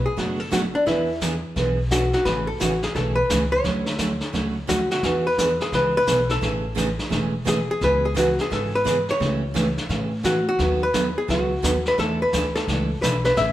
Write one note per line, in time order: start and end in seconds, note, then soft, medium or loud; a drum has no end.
0.06 0.18 G#4 medium
0.17 0.73 F#1 medium
0.17 0.39 B2 medium
0.17 0.39 F#3 medium
0.17 0.39 A3 medium
0.17 0.39 D4 medium
0.17 0.39 F#4 medium
0.17 0.40 F#4 medium
0.17 brush sweep medium
0.17 kick soft
0.17 snare soft
0.40 0.52 A4 loud
0.51 0.63 B2 medium
0.51 0.63 F#3 medium
0.51 0.63 A3 medium
0.51 0.63 D4 medium
0.51 0.64 F#4 medium
0.51 0.59 F#4 medium
0.51 kick soft
0.51 snare medium
0.51 hi-hat pedal medium
0.75 0.86 D4 medium
0.86 1.42 E2 medium
0.86 1.08 E3 medium
0.86 1.08 B3 medium
0.86 1.08 D4 medium
0.86 1.19 E4 medium
0.86 1.08 G#4 medium
0.86 brush sweep medium
0.86 kick soft
0.86 snare soft
1.21 1.33 E3 medium
1.21 1.33 B3 medium
1.21 1.33 D4 medium
1.21 1.33 G#4 medium
1.21 kick soft
1.21 snare medium
1.21 hi-hat pedal soft
1.56 2.12 B1 medium
1.56 1.78 E3 medium
1.56 1.78 B3 medium
1.56 1.78 D4 soft
1.56 1.78 G#4 medium
1.56 brush sweep medium
1.56 kick soft
1.56 snare soft
1.91 2.02 E3 medium
1.91 2.03 B3 medium
1.91 2.03 D4 medium
1.91 2.13 F#4 medium
1.91 2.03 G#4 medium
1.91 kick soft
1.91 snare medium
1.91 hi-hat pedal medium
2.13 2.27 F#4 medium
2.13 snare soft
2.25 2.53 A1 medium
2.25 2.47 C#3 soft
2.25 2.48 E3 medium
2.25 2.47 A3 medium
2.25 2.48 C#4 medium
2.25 2.48 G#4 medium
2.25 2.48 B4 medium
2.25 brush sweep medium
2.25 kick soft
2.25 snare soft
2.47 2.61 A4 medium
2.60 2.90 A1 medium
2.60 2.72 C#3 medium
2.60 2.72 E3 medium
2.60 2.72 A3 medium
2.60 2.72 C#4 medium
2.60 2.84 F#4 medium
2.60 2.72 G#4 medium
2.60 kick soft
2.60 snare medium
2.60 hi-hat pedal medium
2.82 2.95 G#4 medium
2.82 snare soft
2.95 3.25 B1 medium
2.95 3.17 C#3 soft
2.95 3.17 E3 medium
2.95 3.17 A3 medium
2.95 3.18 C#4 medium
2.95 3.18 G#4 medium
2.95 3.18 A4 medium
2.95 brush sweep medium
2.95 kick soft
2.95 snare soft
3.15 3.52 B4 loud
3.29 3.59 C#2 medium
3.29 3.41 C#3 medium
3.29 3.42 E3 medium
3.29 3.42 A3 medium
3.29 3.42 C#4 medium
3.29 3.42 G#4 medium
3.29 kick soft
3.29 snare medium
3.29 hi-hat pedal medium
3.52 4.65 C#5 loud
3.64 4.20 D2 medium
3.64 3.86 D3 medium
3.64 3.86 F#3 medium
3.64 3.86 A3 soft
3.64 3.86 C#4 medium
3.64 3.87 F#4 medium
3.64 brush sweep medium
3.64 kick soft
3.64 snare soft
3.86 snare soft
3.98 4.11 D3 medium
3.98 4.11 F#3 medium
3.98 4.11 A3 medium
3.98 4.12 C#4 medium
3.98 4.11 F#4 medium
3.98 kick soft
3.98 snare medium
3.98 hi-hat pedal medium
4.21 snare soft
4.33 4.63 C#2 medium
4.33 4.55 D3 medium
4.33 4.55 F#3 medium
4.33 4.55 A3 medium
4.33 4.56 C#4 medium
4.33 4.56 F#4 medium
4.33 brush sweep medium
4.33 kick soft
4.33 snare soft
4.67 4.98 D2 medium
4.67 4.79 D3 medium
4.67 4.80 F#3 medium
4.67 4.80 A3 medium
4.67 4.80 C#4 medium
4.67 4.80 F#4 medium
4.67 4.89 F#4 medium
4.67 kick soft
4.67 snare medium
4.67 hi-hat pedal medium
4.91 5.27 F#4 loud
4.91 snare soft
5.03 5.59 E2 medium
5.03 5.25 E3 medium
5.03 5.25 B3 medium
5.03 5.25 D4 medium
5.03 5.25 G#4 medium
5.03 brush sweep medium
5.03 kick soft
5.03 snare soft
5.27 5.62 B4 medium
5.38 5.50 E3 medium
5.38 5.50 B3 medium
5.38 5.50 D4 medium
5.38 5.51 G#4 medium
5.38 kick soft
5.38 snare medium
5.38 hi-hat pedal medium
5.60 5.73 G#4 medium
5.60 snare soft
5.72 6.02 C#2 medium
5.72 5.94 E3 medium
5.72 5.95 B3 medium
5.72 5.95 D4 medium
5.72 5.95 G#4 medium
5.72 5.96 B4 medium
5.72 brush sweep medium
5.72 kick soft
5.72 snare soft
5.97 6.32 B4 loud
6.07 6.37 B1 medium
6.07 6.19 E3 medium
6.07 6.19 B3 medium
6.07 6.19 D4 medium
6.07 6.19 G#4 medium
6.07 kick soft
6.07 snare medium
6.07 hi-hat pedal medium
6.29 7.48 A4 loud
6.29 snare soft
6.41 6.98 A1 medium
6.41 6.63 C#3 medium
6.41 6.63 E3 medium
6.41 6.64 A3 soft
6.41 6.64 C#4 medium
6.41 6.64 G#4 medium
6.41 brush sweep medium
6.41 kick soft
6.41 snare soft
6.75 6.87 C#3 medium
6.75 6.88 E3 medium
6.75 6.88 A3 medium
6.75 6.88 C#4 medium
6.75 6.88 G#4 medium
6.75 kick soft
6.75 snare medium
6.75 hi-hat pedal medium
6.99 snare soft
7.09 7.67 E1 medium
7.09 7.32 C#3 soft
7.09 7.32 E3 medium
7.09 7.33 A3 medium
7.09 7.33 C#4 medium
7.09 7.33 G#4 medium
7.09 brush sweep medium
7.09 kick soft
7.09 snare soft
7.45 7.57 C#3 medium
7.45 7.57 E3 medium
7.45 7.58 A3 medium
7.45 7.58 C#4 medium
7.45 7.58 G#4 medium
7.45 7.70 G#4 medium
7.45 kick soft
7.45 snare medium
7.45 hi-hat pedal medium
7.71 7.83 G#4 loud
7.81 8.37 C#2 medium
7.81 8.03 C#3 soft
7.81 8.03 E3 medium
7.81 8.03 B3 medium
7.81 8.03 C#4 medium
7.81 8.03 G#4 medium
7.81 8.05 B4 loud
7.81 brush sweep soft
7.81 kick soft
7.81 snare soft
8.05 8.16 G#4 medium
8.15 8.27 C#3 medium
8.15 8.27 E3 medium
8.15 8.27 B3 medium
8.15 8.27 C#4 medium
8.15 8.40 F#4 medium
8.15 8.27 G#4 medium
8.15 kick soft
8.15 snare medium
8.15 hi-hat pedal medium
8.38 8.53 G#4 medium
8.38 snare soft
8.50 9.07 G#1 medium
8.50 8.72 C#3 soft
8.50 8.72 E3 medium
8.50 8.72 B3 medium
8.50 8.73 C#4 medium
8.50 8.73 G#4 medium
8.50 8.74 A4 medium
8.50 brush sweep medium
8.50 kick soft
8.50 snare soft
8.75 9.10 B4 loud
8.84 8.96 C#3 medium
8.84 8.97 E3 medium
8.84 8.97 B3 medium
8.84 8.97 C#4 medium
8.84 8.97 G#4 medium
8.84 kick soft
8.84 snare medium
8.84 hi-hat pedal medium
9.08 10.22 C#5 loud
9.08 snare soft
9.19 9.76 C#2 medium
9.19 9.41 C#3 medium
9.19 9.42 E3 medium
9.19 9.42 A3 medium
9.19 9.42 C#4 medium
9.19 9.42 G4 medium
9.19 brush sweep soft
9.19 kick soft
9.19 snare soft
9.54 9.66 C#3 medium
9.54 9.66 E3 medium
9.54 9.66 A3 medium
9.54 9.66 C#4 medium
9.54 9.66 G4 medium
9.54 kick soft
9.54 snare medium
9.54 hi-hat pedal medium
9.78 snare soft
9.89 10.45 A2 medium
9.89 10.11 C#3 medium
9.89 10.11 E3 medium
9.89 10.11 A3 medium
9.89 10.11 C#4 medium
9.89 10.12 G4 medium
9.89 brush sweep soft
9.89 kick soft
9.89 snare soft
10.23 10.35 C#3 medium
10.23 10.36 E3 medium
10.23 10.36 A3 medium
10.23 10.36 C#4 medium
10.23 10.47 F#4 medium
10.23 10.36 G4 medium
10.23 kick soft
10.23 snare medium
10.23 hi-hat pedal medium
10.49 10.83 F#4 loud
10.59 11.15 D#2 medium
10.59 10.81 D#3 medium
10.59 10.81 F#3 medium
10.59 10.81 B3 medium
10.59 10.81 D#4 medium
10.59 10.82 A4 medium
10.59 brush sweep soft
10.59 kick soft
10.59 snare soft
10.83 11.18 B4 loud
10.94 11.05 D#3 medium
10.94 11.05 F#3 medium
10.94 11.06 B3 medium
10.94 11.06 D#4 medium
10.94 11.06 A4 medium
10.94 kick soft
10.94 snare medium
10.94 hi-hat pedal soft
11.18 11.30 G#4 medium
11.28 11.58 C#2 medium
11.28 11.50 D#3 soft
11.28 11.50 F#3 medium
11.28 11.50 B3 medium
11.28 11.50 D#4 medium
11.28 11.88 F#4 medium
11.28 11.50 A4 medium
11.28 brush sweep soft
11.28 kick soft
11.28 snare soft
11.62 11.93 D#2 medium
11.62 11.74 D#3 medium
11.62 11.75 F#3 medium
11.62 11.75 B3 medium
11.62 11.75 D#4 medium
11.62 11.75 A4 medium
11.62 kick soft
11.62 snare medium
11.62 hi-hat pedal medium
11.85 11.99 B4 loud
11.85 snare soft
11.98 12.26 E2 medium
11.98 12.20 E3 medium
11.98 12.20 A3 soft
11.98 12.20 D4 medium
11.98 12.20 E4 medium
11.98 12.20 A4 medium
11.98 12.19 A4 loud
11.98 brush sweep medium
11.98 kick soft
11.98 snare soft
12.22 12.55 B4 medium
12.33 12.63 D2 medium
12.33 12.45 E3 medium
12.33 12.45 A3 medium
12.33 12.45 D4 medium
12.33 12.45 E4 medium
12.33 12.46 A4 medium
12.33 kick soft
12.33 snare medium
12.33 hi-hat pedal soft
12.55 12.99 A4 loud
12.55 snare soft
12.68 12.97 C#2 medium
12.68 12.90 E3 medium
12.68 12.90 A3 soft
12.68 12.90 D4 medium
12.68 12.90 E4 soft
12.68 12.90 A4 medium
12.68 brush sweep soft
12.68 kick soft
12.68 snare soft
13.02 13.32 B1 medium
13.02 13.14 E3 medium
13.02 13.14 A3 medium
13.02 13.14 D4 medium
13.02 13.15 E4 medium
13.02 13.15 A4 medium
13.02 13.23 B4 medium
13.02 kick soft
13.02 snare medium
13.02 hi-hat pedal medium
13.25 13.38 B4 loud
13.25 snare soft
13.36 13.52 A1 medium
13.36 13.52 C#3 medium
13.36 13.52 E3 medium
13.36 13.52 A3 medium
13.36 13.52 C#4 medium
13.36 13.52 G#4 medium
13.36 13.52 E5 loud
13.36 brush sweep soft
13.36 kick soft
13.36 snare medium